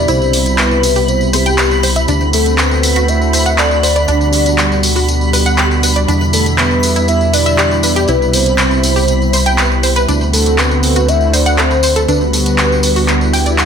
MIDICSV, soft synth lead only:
0, 0, Header, 1, 2, 480
1, 0, Start_track
1, 0, Tempo, 500000
1, 82, Time_signature, 4, 2, 24, 8
1, 13106, End_track
2, 0, Start_track
2, 0, Title_t, "Soft synth lead"
2, 0, Program_c, 0, 80
2, 77, Note_on_c, 0, 72, 97
2, 557, Note_on_c, 0, 71, 99
2, 572, Note_off_c, 0, 72, 0
2, 1040, Note_on_c, 0, 72, 92
2, 1055, Note_off_c, 0, 71, 0
2, 1280, Note_on_c, 0, 67, 81
2, 1294, Note_off_c, 0, 72, 0
2, 1761, Note_off_c, 0, 67, 0
2, 2241, Note_on_c, 0, 69, 85
2, 2464, Note_off_c, 0, 69, 0
2, 2960, Note_on_c, 0, 76, 101
2, 3440, Note_on_c, 0, 74, 103
2, 3454, Note_off_c, 0, 76, 0
2, 3675, Note_off_c, 0, 74, 0
2, 3681, Note_on_c, 0, 74, 93
2, 4603, Note_off_c, 0, 74, 0
2, 6080, Note_on_c, 0, 69, 84
2, 6188, Note_off_c, 0, 69, 0
2, 6321, Note_on_c, 0, 71, 98
2, 6768, Note_off_c, 0, 71, 0
2, 6801, Note_on_c, 0, 76, 105
2, 7041, Note_on_c, 0, 74, 99
2, 7056, Note_off_c, 0, 76, 0
2, 7277, Note_off_c, 0, 74, 0
2, 7283, Note_on_c, 0, 74, 104
2, 7763, Note_on_c, 0, 71, 96
2, 7777, Note_off_c, 0, 74, 0
2, 8004, Note_on_c, 0, 72, 92
2, 8018, Note_off_c, 0, 71, 0
2, 8962, Note_off_c, 0, 72, 0
2, 9920, Note_on_c, 0, 69, 92
2, 10161, Note_on_c, 0, 71, 97
2, 10176, Note_off_c, 0, 69, 0
2, 10640, Note_on_c, 0, 76, 107
2, 10654, Note_off_c, 0, 71, 0
2, 10880, Note_on_c, 0, 74, 102
2, 10895, Note_off_c, 0, 76, 0
2, 11121, Note_on_c, 0, 72, 103
2, 11135, Note_off_c, 0, 74, 0
2, 11595, Note_off_c, 0, 72, 0
2, 11600, Note_on_c, 0, 71, 90
2, 13003, Note_off_c, 0, 71, 0
2, 13106, End_track
0, 0, End_of_file